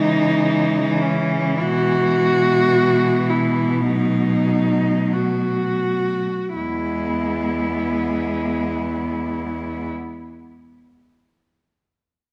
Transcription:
0.00 1.63 C#3 soft
0.00 3.87 E3 medium
0.00 3.83 G#3 medium
0.00 1.03 D#4 medium
1.01 1.62 C#4 medium
1.61 6.28 B2 medium
1.61 3.31 F#4 medium
3.29 3.87 E4 medium
3.87 6.24 F#3 soft
3.87 6.24 A3 soft
3.87 5.15 D#4 medium
5.13 6.55 F#4 medium
6.56 9.88 E2 soft
6.56 9.88 G#3 soft
6.56 9.89 B3 soft
6.56 9.88 E4 soft

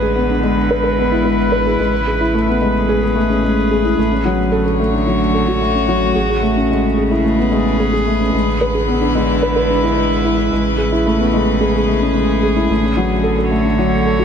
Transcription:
0.00 1.76 A1 medium
0.00 1.79 D3 medium
0.00 0.49 G#4 medium
0.00 0.15 G#4 medium
0.00 0.71 B4 medium
0.00 4.84 B4 medium
0.16 0.28 B3 medium
0.27 1.79 G#3 medium
0.27 0.37 D4 medium
0.43 0.56 G#3 medium
0.43 2.67 E4 medium
0.71 0.82 B4 medium
0.84 0.97 B4 medium
0.99 1.11 B3 medium
1.12 1.24 E4 medium
1.25 1.38 G#3 medium
1.52 1.65 B4 medium
1.67 1.79 G#4 medium
1.79 3.95 A1 medium
1.79 3.97 C#3 medium
1.79 1.92 G#3 medium
2.07 2.20 G#4 medium
2.21 2.33 E4 medium
2.34 2.47 A3 medium
2.48 2.56 B3 medium
2.61 2.74 G#3 medium
2.76 4.84 G#4 medium
2.89 3.01 G#4 medium
3.03 3.15 G#4 medium
3.15 3.28 A3 medium
3.30 3.42 C#4 medium
3.43 3.56 G#3 medium
3.71 3.84 G#4 medium
3.85 3.97 E4 medium
3.98 6.13 A1 medium
3.98 6.16 D3 medium
3.98 4.11 A3 medium
4.11 4.19 C#4 medium
4.25 4.38 F#3 medium
4.52 4.64 A4 medium
4.62 4.78 A4 medium
4.62 6.81 C#5 medium
4.79 4.92 A3 medium
4.93 5.06 D4 medium
4.93 7.03 F#4 medium
5.07 5.20 F#3 medium
5.34 5.47 A4 medium
5.48 5.61 F#4 medium
5.61 5.74 A3 medium
5.75 5.83 C#4 medium
5.88 6.01 F#3 medium
6.15 8.31 A1 medium
6.15 8.34 C#3 medium
6.15 6.28 G#4 medium
6.29 6.42 G#4 medium
6.42 6.56 A3 medium
6.57 6.70 C#4 medium
6.71 6.84 G#3 medium
6.97 7.10 G#4 medium
7.11 7.24 E4 medium
7.11 9.21 G#4 medium
7.11 13.57 B4 medium
7.25 7.38 A3 medium
7.38 7.46 B3 medium
7.52 7.65 G#3 medium
7.80 7.92 G#4 medium
7.94 8.06 G#4 medium
8.07 8.20 A3 medium
8.21 8.33 C#4 medium
8.33 10.49 A1 medium
8.33 10.52 D3 medium
8.33 8.46 G#3 medium
8.61 8.74 B4 medium
8.75 8.88 G#4 medium
8.85 9.01 B3 medium
8.85 11.40 E4 medium
9.01 10.52 G#3 soft
9.01 9.09 D4 medium
9.15 9.28 G#3 medium
9.42 9.55 B4 medium
9.56 9.69 B4 medium
9.70 9.83 D4 medium
9.83 9.96 E4 medium
9.96 10.10 G#3 medium
10.24 10.36 E4 medium
10.38 10.51 E4 medium
10.52 12.68 A1 medium
10.52 12.70 C#3 medium
10.52 10.65 G#3 medium
10.78 10.91 G#4 medium
10.92 11.05 E4 medium
11.06 11.19 A3 medium
11.20 11.28 B3 medium
11.34 11.47 G#3 medium
11.49 13.52 G#4 medium
11.61 11.73 G#4 medium
11.75 11.88 G#4 medium
11.88 12.01 A3 medium
12.02 12.15 C#4 medium
12.15 12.28 G#3 medium
12.43 12.56 G#4 medium
12.56 12.69 E4 medium
12.70 14.25 A1 medium
12.70 14.25 D3 medium
12.70 12.83 A3 medium
12.83 12.91 C#4 medium
12.97 13.10 F#3 medium
13.23 13.36 A4 medium
13.29 14.25 F#4 medium
13.38 13.51 A4 medium
13.51 13.64 A3 medium
13.51 14.25 C#5 medium
13.65 13.78 D4 medium
13.78 13.92 F#3 medium
14.06 14.19 A4 medium
14.19 14.25 F#4 medium

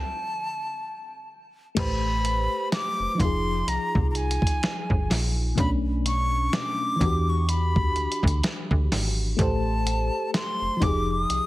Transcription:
0.00 1.30 A5 loud
1.75 2.48 A1 loud
1.75 3.19 A3 medium
1.75 3.20 G4 medium
1.75 3.21 B4 medium
1.75 2.69 B5 loud
1.75 kick loud
1.75 closed hi-hat medium
1.75 crash loud
1.80 3.21 C5 medium
2.25 closed hi-hat medium
2.72 3.22 D6 loud
2.72 snare loud
2.72 closed hi-hat medium
3.00 3.08 F1 soft
3.15 5.51 F3 medium
3.15 5.53 D#4 medium
3.20 3.63 F1 loud
3.20 5.55 F4 medium
3.20 3.70 C6 loud
3.20 kick loud
3.20 closed hi-hat medium
3.25 5.56 G#4 medium
3.67 3.78 C2 medium
3.67 4.10 A#5 loud
3.67 closed hi-hat medium
3.95 4.39 C2 medium
3.95 kick loud
4.11 4.18 A#5 medium
4.15 5.11 G#5 medium
4.15 closed hi-hat soft
4.31 closed hi-hat medium
4.42 kick loud
4.47 closed hi-hat medium
4.63 snare loud
4.63 closed hi-hat medium
4.90 5.08 G1 medium
4.90 kick medium
5.10 5.54 A#1 medium
5.10 snare medium
5.10 open hi-hat medium
5.55 6.49 B1 loud
5.55 6.99 B2 medium
5.55 7.00 A3 medium
5.55 6.98 D4 medium
5.55 kick loud
5.55 closed hi-hat medium
5.59 7.02 C#4 medium
5.59 5.70 B5 loud
6.06 6.56 C#6 loud
6.06 closed hi-hat medium
6.53 7.31 D6 loud
6.53 snare loud
6.53 closed hi-hat medium
6.96 9.32 E3 medium
6.96 9.34 D4 medium
7.01 7.92 E2 loud
7.01 9.36 F#4 medium
7.01 kick loud
7.01 closed hi-hat medium
7.06 9.37 G4 medium
7.30 7.51 C#6 loud
7.49 8.44 B5 medium
7.49 closed hi-hat medium
7.76 kick loud
7.96 8.07 D2 soft
7.96 closed hi-hat soft
8.12 closed hi-hat medium
8.23 8.42 D2 loud
8.23 kick loud
8.28 closed hi-hat medium
8.43 snare loud
8.43 closed hi-hat medium
8.71 8.89 D2 medium
8.71 kick medium
8.92 9.35 G#1 medium
8.92 snare medium
8.92 open hi-hat medium
9.37 10.10 A1 loud
9.37 10.81 A3 medium
9.37 10.81 G4 medium
9.37 10.82 A4 medium
9.37 10.31 A5 medium
9.37 kick loud
9.37 closed hi-hat medium
9.42 10.83 C5 medium
9.87 closed hi-hat medium
10.34 10.85 C6 loud
10.34 snare loud
10.34 closed hi-hat medium
10.62 10.70 F1 soft
10.77 11.46 F3 medium
10.77 11.46 D#4 medium
10.82 11.25 F1 loud
10.82 11.46 G4 medium
10.82 11.12 D6 loud
10.82 kick loud
10.82 closed hi-hat medium
10.87 11.46 G#4 medium
11.11 11.46 D#6 loud
11.30 11.41 C2 soft
11.30 closed hi-hat medium

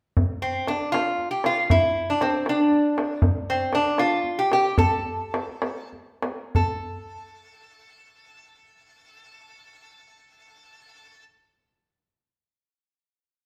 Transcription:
0.17 tombak dum medium
0.42 0.66 C4 medium
0.67 0.92 D4 medium
0.67 tombak tek medium
0.81 tombak ka soft
0.92 1.28 F4 medium
0.92 tombak tek medium
1.18 tombak ka soft
1.31 1.44 G4 medium
1.44 1.71 F4 medium
1.44 tombak tek medium
1.70 2.09 E4 medium
1.70 tombak dum medium
2.10 2.22 D4 medium
2.21 2.47 C4 medium
2.21 tombak tek medium
2.33 tombak ka soft
2.46 3.20 D4 medium
2.46 tombak tek medium
2.72 tombak ka soft
2.98 tombak tek medium
3.22 tombak dum medium
3.50 3.75 C4 medium
3.73 4.01 D4 medium
3.73 tombak tek medium
3.86 tombak ka soft
3.98 4.40 F4 medium
3.98 tombak tek medium
4.24 tombak ka soft
4.39 4.52 G4 medium
4.52 4.78 G4 medium
4.52 tombak tek medium
4.78 5.89 A4 medium
4.78 tombak dum medium
5.06 tombak ka soft
5.34 tombak tek medium
5.48 tombak ka soft
5.62 tombak tek medium
5.93 tombak ka soft
6.22 tombak tek medium
6.55 11.24 A4 medium
6.55 tombak dum medium

